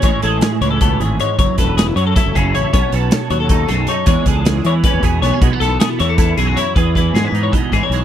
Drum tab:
HH |xxxxxxx|xxxxxxx|xxxxxxx|xxxxxxx|
SD |--o----|-oo-o--|--o--o-|--o---o|
BD |o---o--|oo--oo-|o---o--|oo--oo-|

HH |xxxxxxx|xxxxxxx|
SD |-oooo--|--o----|
BD |o---o--|oo--oo-|